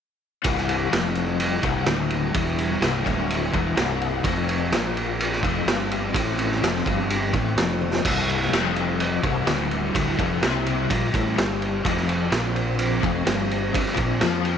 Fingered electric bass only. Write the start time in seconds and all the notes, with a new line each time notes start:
0.45 C1
0.93 F1
1.63 C1
1.87 D1
2.35 E1
2.81 C1
3.06 D1
3.54 E1
3.77 C1
4.25 F1
4.71 A#1
5.43 F1
5.66 G1
6.15 A1
6.61 F1
6.86 G1
7.34 A1
7.56 F1
8.05 C1
8.52 F1
9.24 C1
9.47 D1
9.95 D1
10.19 F1
10.43 C2
10.90 A#1
11.14 A1
11.37 G1
11.86 F1
12.32 A#1
13.03 F1
13.27 G1
13.75 G1
13.98 A#1
14.22 F2